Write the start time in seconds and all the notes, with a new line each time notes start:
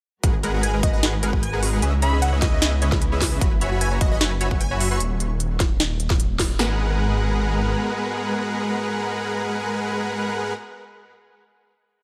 0.24 G#1 G#3 F#4 G#4 A#4 B4 F#5, kick, closed hi-hat
0.34 G#4
0.43 G#3 G#4 A#4 B4 F#5, closed hi-hat
0.54 G#3 F#4 G#4 A#4 B4 F#5
0.63 G#4 G#5, closed hi-hat
0.74 G#3 G#4 A#4 B4 D#5
0.83 G#3 F#4 G#4 A#4 B4 D#5 F#5, kick, closed hi-hat
0.93 G#4 D#5
1.03 G#3 F#4 G#4 A#4 B4 F#5, snare, closed hi-hat
1.13 G#4
1.23 G#3 G#4 A#4 B4 F#5, closed hi-hat
1.33 G#3 F#4 G#4 A#4 B4 G#5, kick
1.43 G#4 G#5, closed hi-hat
1.53 G#3 G#4 A#4 B4 F#5
1.63 F#4, open hi-hat
1.73 G#3 G#4 A#4 B4 F#5
1.82 C#2 C#3 B3 C#4 D#4 E4 G#4 B4 D#5 E5, closed hi-hat
1.93 B4
2.02 C#4 G#4 B4 C#5 D#5 E5 B5, closed hi-hat
2.13 C#4 G#4 B4 D#5 E5
2.22 B4 F#5, closed hi-hat
2.32 C#4 G#4 B4 C#5 D#5 E5
2.42 C#4 G#4 B4 D#5 E5, kick, snare, closed hi-hat
2.52 B4
2.62 C#4 G#4 B4 D#5 E5, snare, closed hi-hat
2.72 B4
2.82 C#4 G#4 B4 C#5 D#5 E5, closed hi-hat
2.92 C#4 G#4 B4 D#5 E5, kick, snare
3.02 B4, closed hi-hat
3.12 C#4 G#4 B4 C#5 D#5 E5
3.22 G#4, kick, snare, open hi-hat
3.32 C#4 G#4 B4 D#5 E5
3.41 F#1 F#3 F#4 B4 C#5 E5 G#5 B5, kick, closed hi-hat
3.52 B4
3.61 F#4 C#5 E5 G#5 B5, closed hi-hat
3.71 F#4 C#5 E5 G#5 B5
3.81 B4 G#5, closed hi-hat
3.91 F#4 C#5 E5 G#5 A#5
4.01 F#4 C#5 D#5 E5 G#5 B5, kick, closed hi-hat
4.11 B4 D#5
4.21 F#4 C#5 E5 G#5 B5, snare, closed hi-hat
4.31 B4
4.41 F#4 C#5 E5 G#5 B5, closed hi-hat
4.51 F#4 C#5 E5 G#5 C#6, kick
4.61 B4 G#5, closed hi-hat
4.71 F#4 C#5 E5 G#5 B5
4.80 F#4, open hi-hat
4.91 F#4 B4 C#5 E5 G#5 B5 C#6
5.00 D#1, closed hi-hat
5.20 closed hi-hat
5.40 closed hi-hat
5.60 kick, snare, closed hi-hat
5.80 snare, closed hi-hat
6.00 closed hi-hat
6.10 kick, snare
6.20 closed hi-hat
6.39 kick, snare, open hi-hat
6.59 G#1 G#3 B3 F#4 G#4 A#4 B4 F#5 A#5, snare